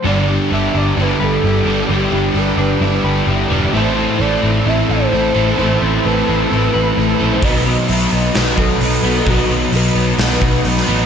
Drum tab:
HH |----------------|----------------|----------------|----------------|
SD |----------------|----------------|----------------|----------------|
BD |----------------|----------------|----------------|----------------|

HH |o---o---o---o---|o---o---o---o---|
SD |--------o-------|--------o----o--|
BD |o---------o-----|o---------o-----|